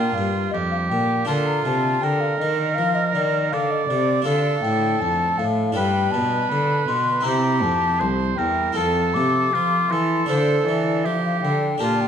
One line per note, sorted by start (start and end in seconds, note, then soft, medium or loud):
0.00 0.13 A#2 soft
0.00 0.15 A#2 soft
0.00 1.23 D4 soft
0.00 0.49 F4 soft
0.00 1.24 F4 soft
0.00 1.24 A#4 soft
0.00 0.16 G5 medium
0.14 0.53 G2 soft
0.14 0.51 G2 soft
0.14 0.50 F5 medium
0.51 0.92 F2 soft
0.51 0.88 F2 soft
0.51 1.27 G4 soft
0.51 0.57 D#5 medium
0.71 0.77 F5 medium
0.89 1.28 A#2 soft
0.89 1.25 A#2 soft
0.89 1.26 G5 medium
1.25 1.65 D3 medium
1.25 4.21 D4 soft
1.25 4.22 F4 soft
1.25 2.06 F4 soft
1.25 4.23 A#4 soft
1.25 1.32 A5 medium
1.29 1.62 D3 soft
1.46 1.65 A#5 medium
1.65 1.99 C3 soft
1.65 2.02 C3 medium
1.65 2.03 A5 medium
2.02 2.40 D3 medium
2.02 2.37 D3 soft
2.02 3.54 A#4 medium
2.02 2.22 G5 medium
2.21 2.38 F5 medium
2.39 2.79 D#3 medium
2.39 2.75 D#3 soft
2.39 2.76 D#5 medium
2.75 3.15 F3 medium
2.75 3.12 F3 soft
2.75 2.96 F5 medium
2.95 3.15 D#5 medium
3.14 3.49 D#3 soft
3.14 3.54 D#3 soft
3.14 3.50 D5 medium
3.50 3.89 D3 medium
3.50 3.87 D3 soft
3.50 4.27 D5 medium
3.50 3.72 F5 medium
3.71 3.86 D#5 medium
3.87 4.26 C3 soft
3.87 4.24 C3 soft
3.87 4.24 D5 medium
4.22 5.70 D4 soft
4.22 5.71 F4 soft
4.22 5.71 A4 soft
4.22 4.64 F5 medium
4.27 4.60 D3 soft
4.27 4.62 D3 medium
4.27 5.46 A4 medium
4.63 5.01 A2 medium
4.63 4.98 A2 soft
4.63 5.02 G5 medium
5.01 5.38 F2 medium
5.01 5.35 F2 soft
5.01 5.40 A5 medium
5.38 5.75 A2 medium
5.38 5.73 A2 soft
5.38 5.74 F5 medium
5.72 7.20 D4 soft
5.72 7.21 F4 soft
5.72 7.22 B4 soft
5.72 7.22 B4 medium
5.72 6.13 G5 medium
5.76 6.13 G2 medium
5.76 6.10 G2 soft
6.11 6.51 B2 medium
6.11 6.48 B2 soft
6.11 6.51 A5 medium
6.50 6.85 D3 soft
6.50 6.88 D3 medium
6.50 6.87 B5 medium
6.87 7.22 B2 soft
6.87 7.25 B2 medium
6.87 7.25 C6 medium
7.21 8.70 C4 soft
7.21 8.71 E4 soft
7.21 8.72 C5 soft
7.21 7.63 A#5 medium
7.25 7.59 C3 soft
7.25 7.65 C3 medium
7.25 8.02 G4 soft
7.62 8.03 F2 medium
7.62 7.97 F2 soft
7.62 8.06 A5 medium
8.00 8.35 C2 soft
8.00 8.38 C2 medium
8.00 8.39 C5 medium
8.36 8.76 E2 medium
8.36 8.73 E2 soft
8.36 8.78 A#4 medium
8.36 8.75 G5 medium
8.73 9.86 C4 soft
8.73 10.23 F4 soft
8.73 10.24 A4 soft
8.73 9.15 A5 medium
8.77 9.18 F2 medium
8.77 9.12 F2 soft
8.77 9.56 A4 medium
9.14 9.50 C3 soft
9.14 9.53 C3 medium
9.14 9.91 D6 medium
9.53 9.90 F3 medium
9.53 9.88 F3 soft
9.53 9.94 F4 medium
9.90 10.28 E3 soft
9.90 10.26 E3 soft
9.90 11.07 A4 medium
9.90 10.28 C6 medium
10.26 10.66 D3 medium
10.26 11.76 D4 soft
10.26 11.76 F4 soft
10.26 11.77 A4 soft
10.26 10.68 C5 medium
10.31 10.64 D3 soft
10.66 11.06 E3 medium
10.66 11.02 E3 soft
10.66 11.05 D5 medium
11.04 11.42 F3 medium
11.04 11.40 F3 soft
11.04 11.65 G4 soft
11.04 11.23 E5 medium
11.24 11.41 F5 medium
11.41 11.80 D3 soft
11.41 11.78 D3 soft
11.41 11.82 G5 medium
11.78 12.08 A#2 soft
11.78 12.08 D4 soft
11.78 12.08 G4 soft
11.78 12.08 A#4 soft
11.78 12.02 A5 medium
11.82 12.08 A#2 soft
11.82 12.08 F4 soft
12.01 12.08 G5 medium